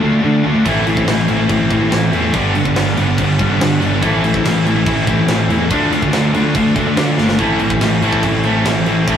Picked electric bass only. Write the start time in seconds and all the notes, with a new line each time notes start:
0.04 D2
0.24 D3
0.46 D2
0.66 A1
1.08 A1
1.29 A1
1.49 A1
1.71 A1
1.92 A1
2.13 E2
2.34 G1
2.56 G1
2.77 G1
2.98 G1
3.18 G1
3.40 G1
3.61 G2
3.82 G1
4.03 A1
4.45 A1
4.66 A1
4.87 A1
5.08 A1
5.28 A1
5.49 E2
5.71 D2
5.91 D2
6.13 D2
6.34 D2
6.55 D2
6.76 D2
6.97 D3
7.18 G1
7.39 A1
7.60 A1
7.81 A1
8.02 A1
8.23 A1
8.44 A1
8.65 A1
9.08 A1